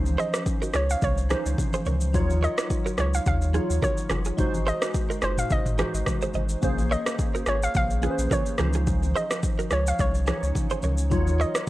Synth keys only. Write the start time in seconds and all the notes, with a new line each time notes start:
Already playing: F3 C#4 D#4 C5
1.29 E3 C#4 D#4 C5
1.35 F3
2.13 F#3 D#4 F4 C#5
3.53 F#3 D#4 F4 C#5
4.37 G#3 D#4 F#4 C5
5.77 G#3 D#4 F#4 C5
6.62 A#3 C#4 G#4 C5
8.02 A#3 C#4 G#4 B4
8.10 C5
8.58 E3 C#4 D#4 C5
8.65 F3
10.26 F3 C#4 D#4 C#5
11.10 F#3 D#4 F4 C#5